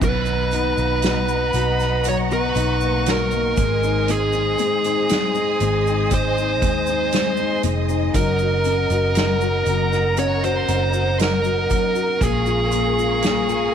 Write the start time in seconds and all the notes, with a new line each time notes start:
0.01 B1 B2 D#3 F#3 B3 D#4 B4 D#5 F#5 A#5 B5, kick, crash, shaker
0.26 B3, shaker
0.51 B2 D#3 F#3 B3 D#4, closed hi-hat, shaker
0.77 B1, shaker
1.02 F#3 B3 D#4 F#4, snare, closed hi-hat, shaker
1.28 shaker
1.53 B1 F#3 B3 D#4 F#4, closed hi-hat, shaker
1.80 snare, shaker
2.04 F#3 C#6, closed hi-hat, shaker
2.09 C#5
2.31 B3 B4, shaker
2.55 B1 F#3 B3 D#4, closed hi-hat, shaker
2.81 A#3, shaker
3.06 F#3 B3 D#4 F#4 A#4, snare, closed hi-hat, shaker
3.10 A#4
3.31 A#3, shaker
3.56 G#1 G#3 C4 D#4 G#4 C5 D#5 G#5 D#6, kick, closed hi-hat, shaker
3.83 D#4, shaker
4.08 G#2 D#3 G#3 C4 D#4 G#4, closed hi-hat, shaker
4.33 D#4, shaker
4.58 G#2 D#3 G#3 C4 D#4 G#4, closed hi-hat, shaker
4.84 D#4, closed hi-hat, shaker
5.09 G#3 C4 D#4 G#4, snare, closed hi-hat, shaker
5.35 D#4, shaker
5.60 G#1 G#3 C4 D#4 G#4, closed hi-hat, shaker
5.87 D#4, shaker
6.11 G#3 C5, kick, closed hi-hat, shaker
6.38 D#4, shaker
6.62 D#2 G#3 C4 D#4 G#4, kick, closed hi-hat, shaker
6.86 D#4, shaker
7.12 G#3 C4 D#4 G#4, snare, closed hi-hat, shaker
7.37 D#4, shaker
7.63 F1 G#3 C4 D#4 G#4, closed hi-hat, shaker
7.89 D#4, shaker
8.14 F#1 F#3 C#4 D#4 A#4 F#5 A#5, kick, closed hi-hat, shaker
8.38 F#4, shaker
8.64 F#3 C#4 D#4 A#4, closed hi-hat, shaker
8.90 F#1 F#4, closed hi-hat, shaker
9.15 F#3 C#4 D#4 A#4, snare, closed hi-hat, shaker
9.41 F#4, shaker
9.66 F#1 F#3, closed hi-hat, shaker
9.93 F#4, snare, shaker
10.17 C#4 C#5, closed hi-hat, shaker
10.44 F#4 C5, closed hi-hat, shaker
10.68 F#1 C#4 D#4 A#4, closed hi-hat, shaker
10.93 F#4, shaker
11.19 F#3 C#4 D#4 A#4, snare, closed hi-hat, shaker
11.44 F#4, shaker
11.70 F#3 C#4 D#4 A#4, kick, closed hi-hat, shaker
11.95 F#4, shaker
12.19 A#1 A#2 G#3 A#3 C#4 F4 G#4 A#4 F5 G#5 C#6, kick, closed hi-hat, shaker
12.23 G#4
12.46 F4, shaker
12.71 A#2 G#3 A#3 C#4 F4 G#4, closed hi-hat, shaker
12.98 F4, shaker
13.22 G#3 A#3 C#4 F4 G#4, snare, closed hi-hat, shaker
13.48 F4, shaker